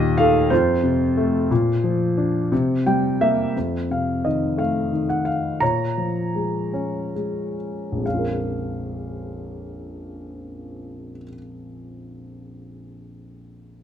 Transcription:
0, 0, Header, 1, 2, 480
1, 0, Start_track
1, 0, Tempo, 661521
1, 1093, Time_signature, 6, 3, 24, 8
1, 1580, Tempo, 686499
1, 3980, Tempo, 730816
1, 4460, Tempo, 808625
1, 4940, Tempo, 914634
1, 6380, Tempo, 881057
1, 7820, Tempo, 928793
1, 8490, End_track
2, 0, Start_track
2, 0, Title_t, "Grand piano"
2, 0, Program_c, 0, 0
2, 0, Control_c, 0, 64, 127
2, 0, Note_on_c, 0, 39, 76
2, 0, Note_on_c, 0, 46, 57
2, 0, Note_on_c, 0, 67, 82
2, 0, Note_on_c, 0, 75, 109
2, 111, Note_off_c, 0, 67, 0
2, 127, Note_on_c, 0, 77, 90
2, 133, Note_on_c, 0, 51, 54
2, 143, Note_on_c, 0, 69, 77
2, 149, Note_off_c, 0, 75, 0
2, 347, Note_off_c, 0, 39, 0
2, 356, Note_off_c, 0, 46, 0
2, 361, Note_off_c, 0, 69, 0
2, 365, Note_off_c, 0, 51, 0
2, 365, Note_on_c, 0, 72, 84
2, 369, Note_on_c, 0, 41, 74
2, 377, Note_off_c, 0, 77, 0
2, 382, Note_on_c, 0, 65, 63
2, 385, Control_c, 0, 64, 0
2, 527, Control_c, 0, 64, 127
2, 605, Note_on_c, 0, 48, 57
2, 852, Note_on_c, 0, 57, 61
2, 1069, Note_off_c, 0, 41, 0
2, 1074, Note_off_c, 0, 48, 0
2, 1085, Note_off_c, 0, 57, 0
2, 1095, Note_on_c, 0, 46, 75
2, 1101, Control_c, 0, 64, 0
2, 1234, Control_c, 0, 64, 127
2, 1334, Note_on_c, 0, 53, 57
2, 1579, Note_on_c, 0, 62, 59
2, 1799, Note_off_c, 0, 46, 0
2, 1804, Note_off_c, 0, 53, 0
2, 1811, Note_off_c, 0, 62, 0
2, 1819, Note_on_c, 0, 48, 75
2, 1828, Control_c, 0, 64, 0
2, 1967, Control_c, 0, 64, 127
2, 2026, Note_off_c, 0, 72, 0
2, 2035, Note_off_c, 0, 65, 0
2, 2061, Note_on_c, 0, 79, 69
2, 2063, Note_on_c, 0, 55, 60
2, 2284, Note_off_c, 0, 79, 0
2, 2302, Note_on_c, 0, 58, 60
2, 2303, Note_on_c, 0, 76, 76
2, 2520, Note_off_c, 0, 48, 0
2, 2526, Note_off_c, 0, 76, 0
2, 2529, Note_off_c, 0, 55, 0
2, 2535, Note_off_c, 0, 58, 0
2, 2549, Note_on_c, 0, 41, 47
2, 2551, Control_c, 0, 64, 0
2, 2676, Control_c, 0, 64, 127
2, 2789, Note_on_c, 0, 48, 38
2, 2794, Note_on_c, 0, 77, 55
2, 3025, Note_on_c, 0, 51, 44
2, 3027, Note_on_c, 0, 75, 57
2, 3035, Note_off_c, 0, 77, 0
2, 3257, Note_on_c, 0, 57, 45
2, 3264, Note_on_c, 0, 77, 62
2, 3270, Note_off_c, 0, 75, 0
2, 3486, Note_off_c, 0, 51, 0
2, 3496, Note_on_c, 0, 51, 43
2, 3596, Note_off_c, 0, 77, 0
2, 3619, Note_on_c, 0, 78, 58
2, 3715, Note_off_c, 0, 48, 0
2, 3729, Note_on_c, 0, 77, 65
2, 3743, Note_off_c, 0, 78, 0
2, 3958, Note_off_c, 0, 41, 0
2, 3959, Note_off_c, 0, 57, 0
2, 3966, Note_off_c, 0, 51, 0
2, 3976, Note_on_c, 0, 82, 79
2, 3984, Note_off_c, 0, 77, 0
2, 3985, Note_on_c, 0, 46, 46
2, 3989, Note_on_c, 0, 73, 53
2, 3992, Control_c, 0, 64, 0
2, 4120, Control_c, 0, 64, 127
2, 4220, Note_on_c, 0, 53, 42
2, 4466, Note_on_c, 0, 56, 40
2, 4694, Note_on_c, 0, 61, 43
2, 4916, Note_off_c, 0, 82, 0
2, 4921, Note_off_c, 0, 73, 0
2, 4933, Note_off_c, 0, 56, 0
2, 4941, Note_on_c, 0, 56, 33
2, 5152, Note_off_c, 0, 53, 0
2, 5344, Note_on_c, 0, 34, 36
2, 5374, Note_on_c, 0, 41, 30
2, 5393, Note_off_c, 0, 61, 0
2, 5394, Note_off_c, 0, 46, 0
2, 5394, Note_off_c, 0, 56, 0
2, 5402, Note_on_c, 0, 56, 28
2, 5416, Note_on_c, 0, 77, 52
2, 5420, Control_c, 0, 64, 0
2, 5432, Note_on_c, 0, 61, 29
2, 5459, Note_on_c, 0, 65, 30
2, 5486, Note_on_c, 0, 70, 35
2, 5505, Control_c, 0, 64, 127
2, 7045, Note_off_c, 0, 34, 0
2, 7076, Note_off_c, 0, 41, 0
2, 7105, Note_off_c, 0, 56, 0
2, 7120, Note_off_c, 0, 77, 0
2, 7136, Note_off_c, 0, 61, 0
2, 7164, Note_off_c, 0, 65, 0
2, 7192, Note_off_c, 0, 70, 0
2, 8490, End_track
0, 0, End_of_file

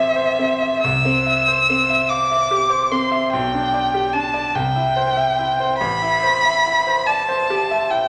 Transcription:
0, 0, Header, 1, 3, 480
1, 0, Start_track
1, 0, Tempo, 864553
1, 457, Time_signature, 6, 3, 24, 8
1, 925, Tempo, 821918
1, 2845, Tempo, 842697
1, 4626, End_track
2, 0, Start_track
2, 0, Title_t, "Violin"
2, 0, Program_c, 0, 40
2, 0, Note_on_c, 0, 76, 99
2, 449, Note_off_c, 0, 76, 0
2, 453, Note_on_c, 0, 88, 114
2, 1173, Note_on_c, 0, 86, 108
2, 1182, Note_off_c, 0, 88, 0
2, 1655, Note_on_c, 0, 84, 94
2, 1664, Note_off_c, 0, 86, 0
2, 1888, Note_off_c, 0, 84, 0
2, 1891, Note_on_c, 0, 79, 102
2, 2365, Note_on_c, 0, 81, 100
2, 2374, Note_off_c, 0, 79, 0
2, 2611, Note_on_c, 0, 79, 101
2, 2619, Note_off_c, 0, 81, 0
2, 3312, Note_off_c, 0, 79, 0
2, 3315, Note_on_c, 0, 83, 126
2, 4050, Note_on_c, 0, 81, 102
2, 4058, Note_off_c, 0, 83, 0
2, 4527, Note_on_c, 0, 79, 94
2, 4536, Note_off_c, 0, 81, 0
2, 4626, Note_off_c, 0, 79, 0
2, 4626, End_track
3, 0, Start_track
3, 0, Title_t, "Grand piano"
3, 0, Program_c, 1, 0
3, 0, Control_c, 1, 64, 127
3, 0, Note_on_c, 1, 33, 68
3, 0, Note_on_c, 1, 60, 61
3, 0, Note_on_c, 1, 76, 60
3, 88, Note_on_c, 1, 72, 64
3, 164, Note_off_c, 1, 76, 0
3, 217, Note_off_c, 1, 60, 0
3, 217, Note_on_c, 1, 60, 56
3, 286, Note_off_c, 1, 72, 0
3, 345, Note_on_c, 1, 76, 64
3, 411, Note_off_c, 1, 60, 0
3, 433, Note_off_c, 1, 33, 0
3, 461, Note_off_c, 1, 76, 0
3, 464, Control_c, 1, 64, 0
3, 467, Note_on_c, 1, 36, 75
3, 549, Control_c, 1, 64, 127
3, 584, Note_on_c, 1, 60, 57
3, 700, Note_on_c, 1, 76, 54
3, 767, Note_off_c, 1, 60, 0
3, 821, Note_on_c, 1, 72, 64
3, 882, Note_off_c, 1, 76, 0
3, 943, Note_on_c, 1, 60, 61
3, 1003, Note_off_c, 1, 72, 0
3, 1060, Note_on_c, 1, 76, 61
3, 1126, Note_off_c, 1, 60, 0
3, 1177, Note_on_c, 1, 77, 52
3, 1244, Note_off_c, 1, 76, 0
3, 1290, Note_off_c, 1, 77, 0
3, 1303, Note_on_c, 1, 76, 61
3, 1418, Note_on_c, 1, 67, 61
3, 1485, Note_off_c, 1, 76, 0
3, 1527, Note_on_c, 1, 72, 66
3, 1604, Note_off_c, 1, 67, 0
3, 1655, Note_on_c, 1, 60, 61
3, 1720, Note_off_c, 1, 72, 0
3, 1770, Note_on_c, 1, 76, 65
3, 1844, Note_off_c, 1, 60, 0
3, 1869, Note_off_c, 1, 36, 0
3, 1889, Note_off_c, 1, 76, 0
3, 1895, Control_c, 1, 64, 0
3, 1896, Note_on_c, 1, 35, 80
3, 1983, Control_c, 1, 64, 127
3, 2020, Note_on_c, 1, 62, 62
3, 2135, Note_on_c, 1, 74, 58
3, 2204, Note_off_c, 1, 62, 0
3, 2254, Note_on_c, 1, 67, 60
3, 2321, Note_off_c, 1, 74, 0
3, 2374, Note_on_c, 1, 62, 61
3, 2441, Note_off_c, 1, 67, 0
3, 2486, Note_on_c, 1, 74, 65
3, 2561, Note_off_c, 1, 62, 0
3, 2587, Note_off_c, 1, 35, 0
3, 2605, Note_off_c, 1, 74, 0
3, 2609, Note_on_c, 1, 36, 73
3, 2615, Control_c, 1, 64, 0
3, 2698, Control_c, 1, 64, 127
3, 2730, Note_on_c, 1, 64, 63
3, 2850, Note_on_c, 1, 72, 64
3, 2918, Note_off_c, 1, 64, 0
3, 2968, Note_on_c, 1, 76, 65
3, 3036, Note_off_c, 1, 72, 0
3, 3093, Note_on_c, 1, 64, 63
3, 3155, Note_off_c, 1, 76, 0
3, 3213, Note_on_c, 1, 72, 69
3, 3278, Note_off_c, 1, 64, 0
3, 3302, Note_off_c, 1, 36, 0
3, 3327, Note_off_c, 1, 72, 0
3, 3330, Note_on_c, 1, 33, 82
3, 3331, Control_c, 1, 64, 0
3, 3426, Control_c, 1, 64, 127
3, 3454, Note_on_c, 1, 64, 61
3, 3573, Note_on_c, 1, 72, 65
3, 3643, Note_off_c, 1, 64, 0
3, 3699, Note_on_c, 1, 76, 66
3, 3763, Note_off_c, 1, 72, 0
3, 3816, Note_on_c, 1, 64, 59
3, 3885, Note_off_c, 1, 76, 0
3, 3936, Note_on_c, 1, 72, 64
3, 4003, Note_off_c, 1, 64, 0
3, 4056, Note_on_c, 1, 74, 56
3, 4122, Note_off_c, 1, 72, 0
3, 4170, Note_off_c, 1, 74, 0
3, 4173, Note_on_c, 1, 72, 72
3, 4297, Note_on_c, 1, 67, 60
3, 4360, Note_off_c, 1, 72, 0
3, 4415, Note_on_c, 1, 76, 69
3, 4482, Note_off_c, 1, 67, 0
3, 4525, Note_on_c, 1, 64, 61
3, 4602, Note_off_c, 1, 76, 0
3, 4626, Note_off_c, 1, 33, 0
3, 4626, Note_off_c, 1, 64, 0
3, 4626, End_track
0, 0, End_of_file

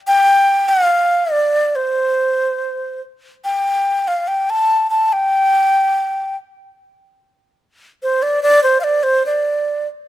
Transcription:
0, 0, Header, 1, 2, 480
1, 0, Start_track
1, 0, Tempo, 841515
1, 44, Time_signature, 2, 2, 24, 8
1, 2926, Tempo, 825309
1, 4846, Tempo, 849858
1, 5778, End_track
2, 0, Start_track
2, 0, Title_t, "Xiao"
2, 0, Program_c, 0, 77
2, 41, Note_on_c, 0, 79, 122
2, 391, Note_on_c, 0, 77, 105
2, 400, Note_off_c, 0, 79, 0
2, 752, Note_on_c, 0, 74, 90
2, 760, Note_off_c, 0, 77, 0
2, 1001, Note_on_c, 0, 72, 91
2, 1009, Note_off_c, 0, 74, 0
2, 1718, Note_off_c, 0, 72, 0
2, 1965, Note_on_c, 0, 79, 89
2, 2325, Note_on_c, 0, 77, 83
2, 2334, Note_off_c, 0, 79, 0
2, 2439, Note_on_c, 0, 79, 86
2, 2448, Note_off_c, 0, 77, 0
2, 2566, Note_on_c, 0, 81, 106
2, 2574, Note_off_c, 0, 79, 0
2, 2794, Note_off_c, 0, 81, 0
2, 2797, Note_on_c, 0, 81, 88
2, 2924, Note_on_c, 0, 79, 109
2, 2933, Note_off_c, 0, 81, 0
2, 3644, Note_off_c, 0, 79, 0
2, 4611, Note_on_c, 0, 72, 95
2, 4726, Note_on_c, 0, 74, 97
2, 4735, Note_off_c, 0, 72, 0
2, 4840, Note_off_c, 0, 74, 0
2, 4843, Note_on_c, 0, 74, 123
2, 4954, Note_off_c, 0, 74, 0
2, 4960, Note_on_c, 0, 72, 98
2, 5044, Note_off_c, 0, 72, 0
2, 5056, Note_on_c, 0, 77, 69
2, 5075, Note_on_c, 0, 74, 90
2, 5084, Note_off_c, 0, 77, 0
2, 5185, Note_on_c, 0, 72, 95
2, 5193, Note_off_c, 0, 74, 0
2, 5311, Note_off_c, 0, 72, 0
2, 5314, Note_on_c, 0, 74, 85
2, 5659, Note_off_c, 0, 74, 0
2, 5778, End_track
0, 0, End_of_file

